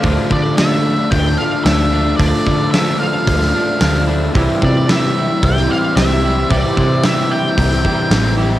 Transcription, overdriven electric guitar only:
\new Staff \with { instrumentName = "Overdriven electric guitar" } { \time 4/4 \key d \minor \tempo 4 = 111 <d a d' f'>8 <a d' f'>8 <d a d' f'>4 <d a d' f'>8 <a d' f'>8 <d a d' f'>8 <a d' f'>8 | <d a d' f'>8 <a d' f'>8 <d a d' f'>4 <d a d' f'>8 <a d' f'>8 <d a d' f'>8 <a d' f'>8 | <c e g c' e'>8 <g c' e'>8 <e g c' e'>4 <c e g c' e'>8 <g c' e'>8 <e g c' e'>8 <g c' e'>8 | <c e g c' e'>8 <g c' e'>8 <e g c' e'>4 <c e g c' e'>8 <g c' e'>8 <e g c' e'>8 <g c' e'>8 | }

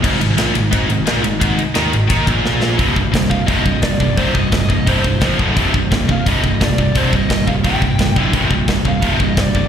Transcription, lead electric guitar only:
\new Staff \with { instrumentName = "Lead electric guitar" } { \time 4/4 \key c \minor \tempo 4 = 173 r1 | r1 | r4. f''8 ees''4 d''4 | c''8 ees''4 ees''8 c''4. r8 |
r4. f''8 ees''4 d''4 | c''8 ees''4 f''8 g''4. r8 | r4. f''8 ees''4 d''4 | }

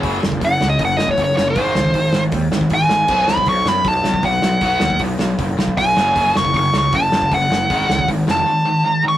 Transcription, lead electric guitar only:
\new Staff \with { instrumentName = "Lead electric guitar" } { \time 4/4 \key gis \dorian \tempo 4 = 156 r4 \tuplet 3/2 { fis''4 dis''8 fis''8 dis''8 cis''8 cis''8 cis''8 bis'8~ } | bis'4. r4. gis''4~ | gis''8 b''8 cis'''8 b''8 a''4 fis''4~ | fis''4 r2 gis''4~ |
gis''8 cis'''8 cis'''8 cis'''8 a''4 fis''4~ | fis''4 r8 a''2 cis'''8 | }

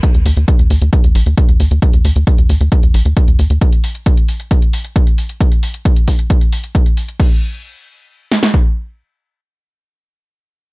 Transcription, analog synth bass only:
\new Staff \with { instrumentName = "Analog synth bass" } { \clef bass \time 4/4 \key ees \lydian \tempo 4 = 134 r16 ees,16 ees,16 ees,16 r16 ees,16 ees,16 ees,16 r16 ees,16 bes,,16 ees,16 r16 ees,16 ees,16 ees,16 | r16 ees,16 ees,16 ees,16 r16 ees,16 ees,16 ees,16 r16 ees,16 bes,,16 ees,16 r16 ees,16 ees,16 ees,16 | r1 | r1 |
r1 | r1 | }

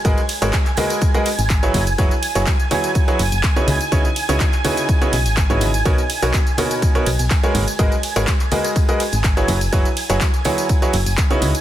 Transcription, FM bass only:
\new Staff \with { instrumentName = "FM bass" } { \clef bass \time 4/4 \key fis \mixolydian \tempo 4 = 124 gis,,16 r8 gis,,16 r4. r16 gis,,8. fis,,8 | fis,,16 r8 fis,,16 r4. fis,,16 fis,,16 r8 cis,16 r16 | cis,16 r8 cis,16 r4. b,,16 gis,,8 gis,,8. | b,,16 r8 b,,16 r4. b,,16 b,,16 r8 gis,,16 r16 |
gis,,16 r8 gis,,16 r4. r16 gis,,8. fis,,8 | fis,,16 r8 fis,,16 r4. fis,,16 fis,,16 r8 cis,16 r16 | }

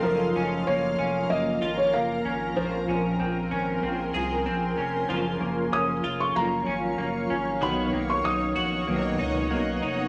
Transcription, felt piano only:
\new Staff \with { instrumentName = "Felt piano" } { \time 4/4 \key ges \lydian \tempo 4 = 95 bes'4 des''4 ees''8. des''16 f''4 | c''2. r4 | r4 ees'''8. des'''16 bes''2 | b''8. des'''16 dis'''2~ dis'''8 r8 | }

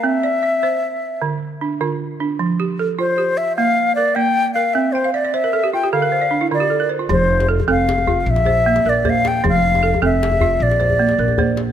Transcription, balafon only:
<<
  \new Staff \with { instrumentName = "Balafon" } { \time 12/8 \key f \major \tempo 4. = 102 bes'8 d''8 e''4. r4. d'8 f'4 d'8~ | d'8 g'8 a'4 g'4. r8 bes'8 d''4 bes'8~ | bes'8 g''16 f''16 e''16 d''8 bes'16 a'16 g'16 f'16 g'16 a'16 bes'16 c''16 d''16 d'16 e'16 f'16 g'16 a'16 bes'16 c''16 f'16~ | f'16 r8. a'8 a'4. r8 c''4 bes'8 c''4~ |
c''8 r8 a'8 a'4. r8 c''4 bes'8 c''4 | }
  \new Staff \with { instrumentName = "Balafon" } { \time 12/8 \key f \major c'4 r8 c''4 r8 d4 r8 d4 r8 | f4 r8 f'4 r8 bes4 r8 bes4 r8 | c'4 r8 c''4 r8 d4 r8 d4 r8 | f4 r8 c'4 f'8 r4 bes4 bes4 |
f4 r8 c'4 f'8 r4 bes4 bes4 | }
>>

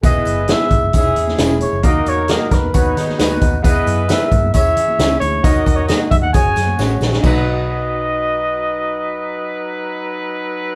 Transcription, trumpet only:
\new Staff \with { instrumentName = "Trumpet" } { \time 4/4 \key b \major \tempo 4 = 134 dis''4 e''4 e''4 r8 cis''8 | dis''8 cis''8 dis''8 b'2 r8 | dis''4 e''4 e''4. cis''8~ | cis''8 dis''16 cis''16 dis''8 e''16 fis''16 gis''4. r8 |
dis''1~ | dis''1 | }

